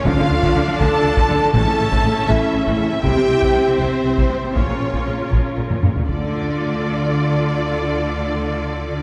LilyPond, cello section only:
\new Staff \with { instrumentName = "Cello section" } { \clef bass \time 6/8 \key d \minor \tempo 4. = 80 d16 d16 d16 d16 d16 d16 d16 r16 d16 d16 d16 d16 | a,16 a,16 a,16 a,16 a,16 a,16 a,16 r16 a,16 a,16 a,16 a,16 | c16 c16 c16 c16 c16 c16 c16 r16 c16 c16 c16 c16 | bes,16 bes,16 bes,16 bes,16 bes,16 bes,16 bes,16 r16 bes,16 bes,16 bes,16 bes,16 |
d2.~ | d2. | }